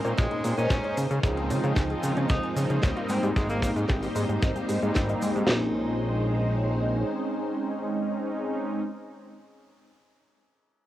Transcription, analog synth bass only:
0.05 0.14 A#2 loud
0.18 0.27 A#1 medium
0.32 0.42 A#2 soft
0.45 0.54 A#2 loud
0.58 0.67 A#2 medium
0.70 0.80 A#1 medium
0.98 1.07 C#3 medium
1.11 1.20 C#3 medium
1.23 1.52 C#2 loud
1.51 1.60 C#3 medium
1.64 1.73 C#3 loud
1.76 1.95 C#2 medium
2.03 2.13 C#3 loud
2.17 2.26 C#3 medium
2.30 2.39 C#2 medium
2.56 2.66 C#3 loud
2.70 2.79 C#3 medium
2.83 2.93 C#2 medium
3.09 3.19 G#2 loud
3.23 3.32 G#2 loud
3.36 3.64 G#1 medium
3.62 3.72 G#2 medium
3.76 3.85 G#2 loud
3.90 4.08 G#1 medium
4.16 4.25 G#2 loud
4.29 4.38 G#2 medium
4.43 4.52 G#1 loud
4.56 4.66 G#2 soft
4.69 4.78 G#2 loud
4.83 4.92 G#2 loud
4.96 5.14 G#1 loud
5.22 5.32 G#2 medium
5.36 5.45 G#2 loud
5.49 7.04 A#1 loud

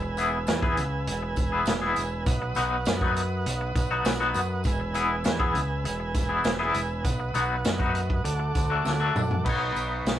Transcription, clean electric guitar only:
0.02 muted clean electric guitar stroke soft
0.18 0.37 E3 medium
0.18 0.37 B3 medium
0.18 0.37 E4 medium
0.18 0.38 G#4 medium
0.47 muted clean electric guitar stroke soft
0.62 0.82 E3 medium
0.62 0.82 B3 medium
0.62 0.82 E4 medium
0.62 0.82 G#4 medium
1.08 muted clean electric guitar stroke soft
1.22 muted clean electric guitar stroke soft
1.52 1.72 E3 medium
1.52 1.72 B3 medium
1.52 1.72 E4 medium
1.52 1.71 G#4 medium
1.82 2.02 E3 medium
1.82 2.02 B3 medium
1.82 2.01 E4 medium
1.82 2.01 G#4 medium
2.42 muted clean electric guitar stroke medium
2.56 2.76 F#3 medium
2.56 2.76 B3 medium
2.56 2.76 D#4 medium
2.56 2.76 F#4 medium
2.87 muted clean electric guitar stroke soft
3.02 3.21 F#3 medium
3.02 3.21 B3 medium
3.02 3.21 D#4 medium
3.02 3.21 F#4 medium
3.46 muted clean electric guitar stroke soft
3.61 muted clean electric guitar stroke medium
3.91 4.11 F#3 medium
3.91 4.11 B3 medium
3.91 4.10 D#4 medium
3.91 4.10 F#4 medium
4.20 4.40 F#3 medium
4.20 4.40 B3 medium
4.20 4.40 D#4 medium
4.20 4.40 F#4 medium
4.80 muted clean electric guitar stroke medium
4.94 5.14 E3 medium
4.94 5.15 B3 medium
4.94 5.15 E4 medium
4.94 5.15 G#4 medium
5.24 muted clean electric guitar stroke soft
5.39 5.60 E3 medium
5.39 5.60 B3 medium
5.39 5.60 E4 medium
5.39 5.59 G#4 medium
5.85 muted clean electric guitar stroke soft
6.00 muted clean electric guitar stroke medium
6.29 6.50 E3 medium
6.29 6.50 B3 medium
6.29 6.50 E4 medium
6.29 6.49 G#4 medium
6.59 6.80 E3 medium
6.59 6.80 B3 medium
6.59 6.80 E4 medium
6.59 6.79 G#4 medium
7.20 muted clean electric guitar stroke soft
7.34 7.54 F#3 medium
7.34 7.55 B3 medium
7.34 7.55 D#4 medium
7.34 7.55 F#4 medium
7.65 muted clean electric guitar stroke soft
7.79 8.00 F#3 medium
7.79 8.00 B3 medium
7.79 8.00 D#4 medium
7.79 8.00 F#4 medium
8.25 muted clean electric guitar stroke soft
8.40 muted clean electric guitar stroke soft
8.70 8.91 F#3 medium
8.70 8.91 A3 medium
8.70 8.90 D4 medium
8.70 8.90 F#4 medium
9.00 9.21 F#3 medium
9.00 9.21 A3 medium
9.00 9.20 D4 medium
9.00 9.20 F#4 medium
9.45 10.19 B3 medium
9.45 10.19 D#4 medium
9.45 10.19 F#4 medium
9.45 10.19 C#5 medium

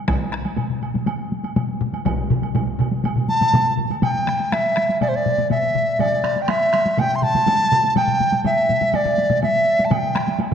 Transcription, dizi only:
3.29 3.75 A5 loud
4.03 4.54 G5 medium
4.53 5.01 E5 medium
5.01 5.10 D5 medium
5.09 5.17 C5 medium
5.16 5.50 D5 medium
5.51 6.02 E5 medium
6.00 6.43 D5 medium
6.42 6.51 G5 medium
6.50 7.01 E5 medium
6.99 7.17 G5 medium
7.16 7.24 C6 medium
7.23 7.96 A5 loud
7.97 8.42 G5 medium
8.46 8.97 E5 medium
8.95 9.43 D5 medium
9.43 9.86 E5 medium
9.85 9.94 A5 medium
9.92 10.39 G5 medium

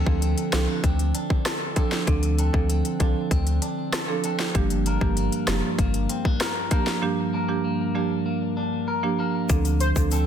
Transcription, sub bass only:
0.07 0.35 D2 loud
0.53 0.67 C2 medium
0.84 1.12 D2 loud
2.08 2.50 D2 loud
2.54 2.82 D2 loud
3.00 3.14 C2 medium
3.31 3.59 D2 loud
4.55 4.97 G1 loud
5.01 5.29 G1 loud
5.48 5.62 F1 loud
5.79 6.07 G1 medium
9.50 9.92 D2 loud
9.96 10.24 D2 loud

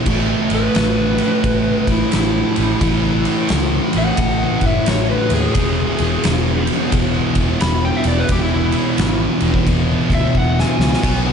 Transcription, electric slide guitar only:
0.55 1.87 B4 loud
1.92 2.13 E4 medium
2.15 3.48 E4 loud
3.98 4.64 F#5 loud
4.66 4.88 E5 loud
4.89 5.10 C#5 medium
5.11 5.33 B4 medium
5.33 6.66 G#4 loud
7.61 7.84 B5 loud
7.85 8.05 G5 medium
7.96 8.03 E5 loud
8.08 8.22 D5 medium
8.20 8.29 B4 loud
8.32 8.43 G4 medium
8.44 8.52 E4 loud
8.54 9.20 E4 loud
10.15 10.36 E5 medium
10.38 10.59 F#5 loud
10.60 11.32 G#5 loud

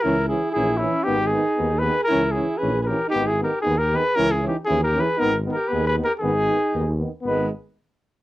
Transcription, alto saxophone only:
0.03 0.28 E4 medium
0.28 0.53 E4 medium
0.54 0.82 E4 loud
0.80 1.07 C#4 medium
1.06 1.34 D#4 medium
1.34 1.83 D#4 medium
1.82 2.07 G#4 medium
2.08 2.33 E4 loud
2.33 2.59 E4 medium
2.57 2.80 G#4 loud
2.81 3.07 G4 medium
2.81 2.84 G#4 medium
3.08 3.31 D#4 medium
3.29 3.42 E4 medium
3.42 3.61 G4 medium
3.62 3.81 D#4 medium
3.79 3.99 G4 medium
3.98 4.17 G#4 medium
4.16 4.32 E4 loud
4.32 4.49 E4 medium
4.49 4.58 D#4 medium
4.66 4.83 E4 loud
4.83 5.04 G4 medium
5.02 5.19 G#4 medium
5.17 5.36 D#4 medium
5.55 5.74 G4 medium
5.73 5.88 G#4 medium
5.88 5.96 G#4 medium
6.05 6.13 G4 medium
6.24 6.97 D#4 medium
7.27 7.50 G#3 medium

